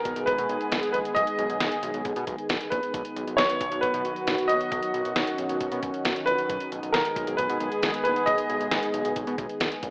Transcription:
0.00 9.90 D#3 medium
0.00 2.90 G#3 medium
0.00 2.90 B3 medium
0.00 2.90 G#4 medium
0.00 0.28 A#4 medium
0.05 0.14 B1 medium
0.05 kick medium
0.05 closed hi-hat medium
0.16 0.25 B1 medium
0.16 closed hi-hat medium
0.26 0.36 B1 loud
0.26 0.89 B4 medium
0.26 kick medium
0.26 closed hi-hat medium
0.38 0.47 B2 medium
0.38 closed hi-hat medium
0.49 0.58 B1 medium
0.49 closed hi-hat medium
0.61 closed hi-hat soft
0.72 0.81 B1 loud
0.72 snare medium
0.72 closed hi-hat medium
0.83 closed hi-hat medium
0.92 1.03 A#1 medium
0.92 0.98 B4 medium
0.92 closed hi-hat medium
1.05 closed hi-hat medium
1.15 1.25 B1 loud
1.15 2.00 D#5 loud
1.15 kick loud
1.15 closed hi-hat medium
1.27 closed hi-hat medium
1.39 1.47 B1 loud
1.39 closed hi-hat medium
1.50 1.58 B1 medium
1.50 closed hi-hat soft
1.60 1.69 B1 loud
1.60 snare loud
1.60 closed hi-hat medium
1.72 closed hi-hat medium
1.83 1.92 B1 loud
1.83 closed hi-hat medium
1.94 2.03 B1 medium
1.94 closed hi-hat medium
2.05 2.14 B1 loud
2.05 kick medium
2.05 closed hi-hat medium
2.16 2.25 B2 medium
2.16 closed hi-hat medium
2.27 2.36 B1 loud
2.27 kick medium
2.27 closed hi-hat medium
2.38 closed hi-hat soft
2.49 2.58 B1 loud
2.49 snare loud
2.49 closed hi-hat medium
2.61 closed hi-hat medium
2.70 2.80 A#1 medium
2.70 3.40 B4 medium
2.70 kick medium
2.70 closed hi-hat medium
2.83 closed hi-hat soft
2.94 3.03 B1 loud
2.94 6.46 F#3 medium
2.94 4.70 B3 medium
2.94 6.46 F#4 medium
2.94 kick loud
2.94 closed hi-hat medium
3.05 closed hi-hat medium
3.16 3.25 B1 loud
3.16 closed hi-hat medium
3.27 3.36 B1 medium
3.27 closed hi-hat medium
3.37 3.47 B1 medium
3.37 3.83 C#5 medium
3.37 snare loud
3.37 closed hi-hat medium
3.50 closed hi-hat medium
3.61 3.69 B1 loud
3.61 kick medium
3.61 closed hi-hat medium
3.72 3.80 B1 medium
3.72 closed hi-hat medium
3.81 3.92 B1 loud
3.81 4.51 B4 medium
3.81 kick medium
3.81 closed hi-hat medium
3.94 4.03 B2 loud
3.94 closed hi-hat medium
4.05 4.14 B1 medium
4.05 closed hi-hat medium
4.16 closed hi-hat soft
4.27 4.36 B1 loud
4.27 snare medium
4.27 closed hi-hat medium
4.38 closed hi-hat medium
4.48 4.58 A#1 medium
4.48 5.78 D#5 medium
4.48 closed hi-hat medium
4.61 closed hi-hat soft
4.72 4.80 B1 loud
4.72 6.48 C#4 medium
4.72 kick loud
4.72 closed hi-hat medium
4.83 closed hi-hat medium
4.94 5.03 B1 loud
4.94 closed hi-hat medium
5.05 5.14 B1 medium
5.05 closed hi-hat medium
5.16 5.25 B1 loud
5.16 snare loud
5.16 closed hi-hat medium
5.27 closed hi-hat medium
5.38 5.47 B1 medium
5.38 closed hi-hat medium
5.49 5.58 B1 loud
5.49 closed hi-hat medium
5.61 5.69 B1 loud
5.61 kick medium
5.61 closed hi-hat medium
5.72 5.80 B2 loud
5.72 closed hi-hat medium
5.83 5.92 B1 loud
5.83 kick medium
5.83 closed hi-hat medium
5.94 closed hi-hat soft
6.05 6.14 B1 loud
6.05 snare loud
6.05 closed hi-hat medium
6.16 closed hi-hat medium
6.26 6.36 A#1 medium
6.26 6.68 B4 loud
6.26 closed hi-hat medium
6.38 closed hi-hat soft
6.49 6.58 B1 loud
6.49 9.90 G#3 medium
6.49 9.90 B3 medium
6.49 9.90 G#4 medium
6.49 kick loud
6.49 closed hi-hat medium
6.60 closed hi-hat medium
6.72 6.80 B1 loud
6.72 closed hi-hat medium
6.83 6.92 B1 medium
6.83 closed hi-hat soft
6.92 7.03 B1 loud
6.92 7.35 A#4 medium
6.92 snare loud
6.92 closed hi-hat medium
7.05 closed hi-hat medium
7.16 7.25 B1 medium
7.16 kick medium
7.16 closed hi-hat medium
7.27 7.36 B1 medium
7.27 closed hi-hat medium
7.37 7.47 B1 loud
7.37 8.02 B4 medium
7.37 kick medium
7.37 closed hi-hat medium
7.50 7.58 B2 medium
7.50 closed hi-hat medium
7.60 7.69 B1 loud
7.60 closed hi-hat medium
7.72 closed hi-hat soft
7.83 7.92 B1 loud
7.83 snare loud
7.83 closed hi-hat medium
7.94 closed hi-hat medium
8.04 8.14 A#1 loud
8.04 8.27 B4 medium
8.04 closed hi-hat medium
8.16 closed hi-hat soft
8.26 8.36 B1 loud
8.26 9.12 D#5 loud
8.26 kick loud
8.26 closed hi-hat medium
8.38 closed hi-hat medium
8.50 8.58 B1 loud
8.50 closed hi-hat medium
8.61 8.69 B1 loud
8.61 closed hi-hat medium
8.71 8.80 B1 medium
8.71 snare loud
8.71 closed hi-hat medium
8.83 closed hi-hat medium
8.94 9.03 B1 loud
8.94 closed hi-hat medium
9.05 9.14 B1 medium
9.05 closed hi-hat medium
9.16 9.25 B1 loud
9.16 kick medium
9.16 closed hi-hat medium
9.27 9.36 B2 loud
9.27 closed hi-hat medium
9.38 9.47 B1 loud
9.38 kick medium
9.38 closed hi-hat medium
9.49 closed hi-hat soft
9.60 9.69 B1 loud
9.60 snare loud
9.60 closed hi-hat medium
9.72 closed hi-hat medium
9.83 9.90 A#1 medium
9.83 kick medium
9.83 closed hi-hat medium

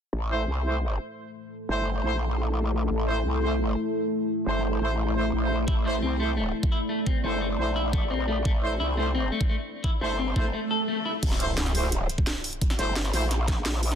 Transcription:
0.13 0.46 A1 medium
0.13 11.19 A3 medium
0.13 11.19 E4 medium
0.13 5.66 A4 medium
0.30 0.40 A3 medium
0.30 0.40 E4 medium
0.30 0.40 C5 loud
0.48 0.98 C2 loud
0.65 0.74 A3 medium
0.65 0.74 E4 medium
0.65 0.74 C5 medium
1.69 2.02 G1 loud
1.69 1.84 A3 medium
1.69 1.84 E4 medium
1.69 1.84 C5 loud
2.04 2.89 A#1 medium
2.04 2.13 A3 medium
2.04 2.13 E4 medium
2.04 2.13 C5 loud
2.90 3.24 A1 loud
3.08 3.17 A3 medium
3.08 3.17 E4 medium
3.08 3.17 C5 loud
3.25 3.76 C2 loud
3.42 3.52 A3 medium
3.42 3.52 E4 medium
3.42 3.52 C5 medium
4.46 4.80 G1 loud
4.46 4.61 A3 medium
4.46 4.61 E4 medium
4.46 4.61 C5 medium
4.81 5.32 A1 medium
4.81 4.91 A3 medium
4.81 4.91 E4 medium
4.81 4.91 C5 loud
5.16 5.25 A3 medium
5.16 5.25 E4 medium
5.16 5.25 C5 loud
5.33 5.66 A#1 medium
5.42 5.57 A3 medium
5.42 5.57 E4 medium
5.42 5.57 C5 medium
5.68 6.01 A1 medium
5.68 5.74 E4 loud
5.68 11.20 D5 medium
5.68 kick loud
5.85 5.95 A3 medium
5.85 5.95 E4 medium
5.85 5.95 C5 loud
6.02 6.53 C2 loud
6.02 6.12 C4 medium
6.20 6.29 A3 medium
6.20 6.30 A3 medium
6.20 6.29 E4 medium
6.20 6.29 C5 medium
6.37 6.43 A3 medium
6.63 kick loud
6.72 6.78 E4 medium
6.89 6.99 A3 medium
7.06 7.16 C4 medium
7.06 kick loud
7.24 7.57 G1 loud
7.24 7.34 A3 medium
7.24 7.39 A3 medium
7.24 7.39 E4 medium
7.24 7.39 C5 loud
7.41 7.47 A3 medium
7.59 8.44 A#1 medium
7.59 7.68 A3 medium
7.59 7.68 E4 medium
7.59 7.68 C5 loud
7.76 7.82 E4 loud
7.93 8.03 A3 medium
7.93 kick medium
8.11 8.20 C4 medium
8.28 8.38 A3 medium
8.45 8.79 A1 loud
8.45 8.51 A3 medium
8.45 kick loud
8.63 8.72 A3 loud
8.63 8.72 E4 medium
8.63 8.72 C5 loud
8.80 9.31 C2 loud
8.80 8.86 E4 loud
8.97 9.07 A3 medium
8.97 9.07 E4 medium
8.97 9.07 C5 medium
9.15 9.24 C4 medium
9.32 9.42 A3 medium
9.41 kick loud
9.49 9.55 A3 medium
9.84 9.90 E4 loud
9.84 kick loud
10.01 10.35 G1 loud
10.01 10.11 A3 medium
10.01 10.16 A3 medium
10.01 10.16 E4 medium
10.01 10.16 C5 loud
10.19 10.28 C4 medium
10.36 10.53 A#1 medium
10.36 10.45 A3 medium
10.36 10.46 A3 medium
10.36 10.45 E4 medium
10.36 10.45 C5 loud
10.36 kick medium
10.53 10.59 A3 medium
10.53 swell medium
10.71 10.80 A4 medium
10.88 10.98 A3 medium
11.05 11.11 E4 medium
11.23 11.56 A1 loud
11.23 kick loud
11.23 closed hi-hat medium
11.23 crash loud
11.23 impact medium
11.31 snare medium
11.40 11.49 A3 medium
11.40 11.49 E4 medium
11.40 11.49 C5 loud
11.40 closed hi-hat medium
11.57 12.08 C2 loud
11.57 snare loud
11.57 closed hi-hat loud
11.57 closed hi-hat medium
11.66 snare soft
11.66 closed hi-hat soft
11.75 11.84 A3 medium
11.75 11.84 E4 medium
11.75 11.84 C5 medium
11.75 closed hi-hat medium
11.75 open hi-hat medium
11.83 snare medium
11.92 closed hi-hat loud
11.92 closed hi-hat medium
12.09 closed hi-hat medium
12.18 kick loud
12.27 snare loud
12.27 closed hi-hat medium
12.44 closed hi-hat medium
12.44 open hi-hat medium
12.53 closed hi-hat soft
12.61 kick loud
12.61 closed hi-hat medium
12.70 snare medium
12.79 13.12 G1 loud
12.79 12.94 A3 loud
12.79 12.94 E4 medium
12.79 12.94 C5 loud
12.79 snare soft
12.79 closed hi-hat medium
12.96 snare loud
12.96 closed hi-hat medium
13.05 snare soft
13.13 13.95 A#1 loud
13.13 13.23 A3 loud
13.13 13.23 E4 medium
13.13 13.23 C5 loud
13.13 snare medium
13.13 closed hi-hat medium
13.13 open hi-hat medium
13.22 snare soft
13.31 snare soft
13.31 closed hi-hat medium
13.31 closed hi-hat loud
13.48 kick loud
13.48 snare soft
13.48 closed hi-hat medium
13.65 snare loud
13.65 closed hi-hat medium
13.83 closed hi-hat medium
13.83 open hi-hat medium
13.92 snare soft
13.92 closed hi-hat soft

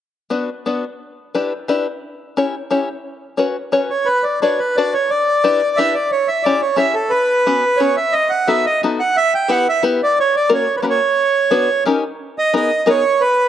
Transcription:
0.30 0.48 B3 medium
0.30 0.49 D4 soft
0.30 0.49 F#4 soft
0.30 0.49 B4 soft
0.66 0.83 B3 soft
0.66 0.84 D4 soft
0.66 0.84 F#4 soft
0.66 0.84 B4 soft
1.35 1.52 D4 medium
1.35 1.52 E4 soft
1.35 1.52 G4 soft
1.35 1.52 B4 medium
1.68 1.86 D4 medium
1.68 1.86 E4 soft
1.68 1.86 G4 soft
1.68 1.86 B4 medium
2.37 2.54 C#4 medium
2.37 2.54 E4 soft
2.37 2.54 G4 soft
2.37 2.54 C#5 medium
2.71 2.88 C#4 medium
2.71 2.88 E4 soft
2.71 2.88 G4 medium
2.71 2.88 C#5 medium
3.37 3.55 C#4 soft
3.37 3.56 F#4 medium
3.37 3.56 B4 soft
3.37 3.55 C#5 medium
3.72 3.90 C#4 medium
3.72 3.90 F#4 soft
3.72 3.90 B4 soft
3.72 3.90 C#5 medium
3.90 4.08 C#5 medium
4.05 4.24 B4 medium
4.23 4.40 D5 medium
4.42 4.59 D4 soft
4.42 4.59 F#4 soft
4.42 4.60 B4 soft
4.42 4.60 C#5 medium
4.42 4.60 D5 medium
4.59 4.76 B4 medium
4.76 4.94 D4 medium
4.76 4.94 F#4 soft
4.76 4.94 B4 soft
4.76 4.94 D5 medium
4.94 5.10 C#5 medium
5.10 5.79 D5 medium
5.44 5.60 D4 medium
5.44 5.60 E4 soft
5.44 5.60 G4 soft
5.44 5.61 B4 medium
5.77 5.94 D4 medium
5.77 5.95 E4 soft
5.77 5.95 G4 soft
5.77 5.95 B4 medium
5.77 5.94 E5 medium
5.94 6.11 D5 medium
6.12 6.28 C#5 medium
6.28 6.44 E5 medium
6.43 6.62 C#4 soft
6.43 6.62 E4 soft
6.43 6.62 G4 soft
6.43 6.62 C#5 medium
6.43 6.61 D5 medium
6.62 6.77 C#5 medium
6.76 6.94 C#4 medium
6.76 6.94 E4 soft
6.76 6.94 G4 medium
6.76 6.95 C#5 medium
6.76 6.95 E5 medium
6.94 7.11 A4 medium
7.10 7.81 B4 medium
7.46 7.63 B3 soft
7.46 7.63 C#4 soft
7.46 7.63 F#4 soft
7.46 7.63 B4 medium
7.77 7.97 B3 soft
7.77 7.97 C#4 soft
7.77 7.97 F#4 soft
7.77 7.97 B4 soft
7.77 7.96 C#5 medium
7.97 8.14 E5 medium
8.12 8.31 D#5 loud
8.30 8.48 F#5 medium
8.47 8.65 B3 medium
8.47 8.65 D#4 soft
8.47 8.65 F#4 soft
8.47 8.65 A4 medium
8.47 8.65 E5 medium
8.66 8.81 D#5 medium
8.83 9.00 B3 medium
8.83 9.00 D#4 soft
8.83 9.00 F#4 soft
8.83 9.00 A4 medium
9.00 9.16 F#5 medium
9.17 9.34 E5 loud
9.35 9.51 G5 medium
9.48 9.66 B3 soft
9.48 9.66 E4 medium
9.48 9.66 G4 soft
9.48 9.66 B4 medium
9.48 9.68 F#5 loud
9.69 9.83 E5 medium
9.83 10.00 B3 medium
9.83 10.00 E4 medium
9.83 10.01 G4 medium
9.83 10.00 B4 medium
10.03 10.19 D5 medium
10.20 10.36 C#5 medium
10.36 10.52 D5 medium
10.49 10.66 A#3 medium
10.49 10.67 C#4 soft
10.49 10.67 F#4 soft
10.49 10.67 A#4 medium
10.54 10.76 C#5 medium
10.77 10.79 B4 medium
10.77 10.81 C#5 soft
10.82 11.00 A#3 soft
10.82 11.00 C#4 soft
10.82 11.00 F#4 soft
10.82 11.00 A#4 medium
10.82 10.85 B4 medium
10.90 11.84 C#5 medium
11.51 11.68 B3 medium
11.51 11.68 D4 medium
11.51 11.68 F#4 medium
11.51 11.68 B4 medium
11.86 12.03 C#4 medium
11.86 12.03 D#4 medium
11.86 12.03 G4 medium
11.86 12.02 A#4 medium
12.38 12.54 D#5 medium
12.54 12.70 B3 soft
12.54 12.70 D#4 medium
12.54 12.70 G#4 medium
12.54 12.70 A#4 medium
12.54 12.89 D#5 medium
12.86 13.03 B3 medium
12.86 13.04 D#4 soft
12.86 13.03 G#4 medium
12.86 13.03 A#4 medium
12.86 13.22 C#5 medium
13.21 13.48 B4 medium

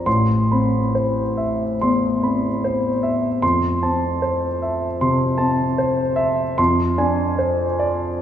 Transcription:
0.06 1.75 A1 soft
0.06 0.77 C6 medium
0.52 1.21 C4 soft
0.52 1.20 B5 soft
0.95 1.63 C5 soft
1.37 2.05 E5 soft
1.81 2.48 E2 soft
1.81 2.48 C6 soft
2.23 2.88 C4 soft
2.23 2.88 B5 soft
2.64 3.27 C5 soft
3.03 3.42 E5 soft
3.42 4.97 F2 soft
3.42 4.06 C6 medium
3.83 4.46 C4 soft
3.83 4.46 A5 soft
4.22 4.85 C5 soft
4.62 5.25 E5 soft
5.01 5.63 C3 soft
5.01 5.63 C6 soft
5.38 6.01 C4 soft
5.38 6.01 A5 soft
5.78 6.42 C5 soft
6.16 6.58 E5 medium
6.58 8.22 F2 medium
6.58 7.24 C6 medium
6.98 7.65 D4 soft
6.98 7.65 G#5 soft
7.39 8.07 C5 soft
7.79 8.22 D5 soft

